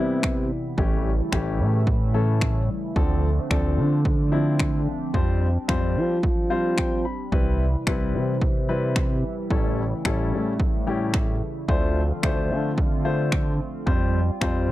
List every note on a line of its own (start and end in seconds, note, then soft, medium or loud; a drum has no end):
0.00 0.43 C3 medium
0.00 0.52 C3 medium
0.00 0.76 C3 medium
0.00 0.76 E3 medium
0.00 0.43 G3 medium
0.00 2.92 G3 medium
0.00 0.43 B3 medium
0.00 0.76 B3 medium
0.00 0.43 E4 medium
0.00 0.76 E4 medium
0.23 finger snap loud
0.23 kick loud
0.78 1.22 A1 loud
0.78 2.94 C#3 medium
0.78 1.09 E3 medium
0.78 2.94 E3 medium
0.78 1.09 A3 medium
0.78 2.94 A3 medium
0.78 1.09 C#4 medium
0.78 2.94 E4 medium
0.78 1.09 G4 medium
0.78 kick loud
1.32 1.61 A1 medium
1.32 1.79 E3 medium
1.32 1.79 A3 medium
1.32 1.79 C#4 medium
1.32 1.79 G4 medium
1.32 finger snap loud
1.32 kick loud
1.60 2.70 A2 medium
1.87 kick loud
2.14 2.61 E3 medium
2.14 2.61 A3 medium
2.14 2.61 C#4 medium
2.14 2.61 A4 medium
2.41 finger snap loud
2.41 kick loud
2.96 3.40 D2 loud
2.96 5.12 D3 medium
2.96 3.27 F3 medium
2.96 5.12 F3 medium
2.96 5.12 A3 medium
2.96 7.28 C4 medium
2.96 3.27 C4 medium
2.96 7.28 D4 medium
2.96 3.27 D4 medium
2.96 3.27 A4 loud
2.96 kick loud
3.50 3.79 D2 medium
3.50 3.97 F3 medium
3.50 3.97 C4 medium
3.50 3.98 D4 medium
3.50 3.98 A4 loud
3.50 finger snap loud
3.50 kick loud
3.77 4.88 D3 medium
4.05 kick loud
4.32 4.79 F3 medium
4.32 4.79 C4 medium
4.32 4.79 D4 medium
4.32 4.79 E4 medium
4.59 finger snap loud
4.59 kick loud
5.14 5.58 F2 loud
5.14 5.45 G3 medium
5.14 11.65 G3 medium
5.14 5.45 C4 medium
5.14 5.45 F4 medium
5.14 5.46 C5 loud
5.14 kick loud
5.68 5.97 F2 medium
5.68 6.15 G3 medium
5.68 6.16 C4 medium
5.68 6.16 F4 medium
5.68 6.16 C5 medium
5.68 finger snap loud
5.68 kick loud
5.96 7.06 F3 medium
6.23 kick loud
6.50 6.97 G3 medium
6.50 6.97 C4 medium
6.50 6.97 F4 medium
6.50 6.98 C5 medium
6.50 6.76 F5 medium
6.78 7.03 G5 medium
6.78 finger snap loud
6.78 kick loud
7.05 7.30 B5 medium
7.32 7.76 C2 loud
7.32 9.48 C3 medium
7.32 11.65 E3 medium
7.32 7.63 G3 medium
7.32 7.64 C4 medium
7.32 11.65 E4 medium
7.32 7.64 E4 medium
7.32 9.48 B4 medium
7.32 7.64 B4 medium
7.32 kick loud
7.87 8.16 C2 medium
7.87 8.34 G3 medium
7.87 8.34 C4 medium
7.87 8.34 E4 medium
7.87 8.34 B4 medium
7.87 finger snap loud
7.87 kick loud
8.14 9.24 C3 medium
8.41 kick loud
8.69 9.16 G3 medium
8.69 9.16 C4 medium
8.69 9.16 E4 medium
8.69 9.16 B4 medium
8.96 finger snap loud
8.96 kick loud
9.50 9.95 A1 loud
9.50 11.66 C#3 medium
9.50 9.82 G3 medium
9.50 11.66 A3 medium
9.50 9.82 C#4 medium
9.50 9.82 E4 medium
9.50 9.82 A4 medium
9.50 kick loud
10.05 10.34 A1 medium
10.05 10.52 G3 medium
10.05 10.52 C#4 medium
10.05 10.52 E4 medium
10.05 10.52 A4 medium
10.05 finger snap loud
10.05 kick loud
10.33 11.43 A2 medium
10.60 kick loud
10.87 11.34 G3 medium
10.87 11.34 C#4 medium
10.87 11.34 E4 medium
10.87 11.34 G4 medium
11.14 finger snap loud
11.14 kick loud
11.68 12.13 D2 loud
11.68 13.85 D3 medium
11.68 13.85 F3 medium
11.68 12.00 A3 medium
11.68 13.85 A3 medium
11.68 14.72 C4 medium
11.68 12.00 D4 medium
11.68 12.00 F4 medium
11.68 13.85 F4 medium
11.68 12.00 C5 loud
11.68 kick loud
12.23 12.52 D2 medium
12.23 12.70 A3 medium
12.23 12.70 D4 medium
12.23 12.70 F4 medium
12.23 12.70 C5 loud
12.23 finger snap loud
12.23 kick loud
12.50 13.61 D3 medium
12.78 kick loud
13.05 13.52 A3 medium
13.05 13.52 D4 medium
13.05 13.52 F4 medium
13.05 13.52 C5 medium
13.32 finger snap loud
13.32 kick loud
13.86 14.31 F2 loud
13.86 14.18 G3 medium
13.86 14.72 G3 medium
13.86 14.18 C4 medium
13.86 14.72 F4 medium
13.86 14.18 F4 medium
13.86 14.18 C5 medium
13.86 kick loud
14.41 14.70 F2 medium
14.41 14.72 G3 medium
14.41 14.72 C4 medium
14.41 14.72 F4 medium
14.41 14.72 C5 loud
14.41 finger snap loud
14.41 kick loud
14.69 14.72 F3 medium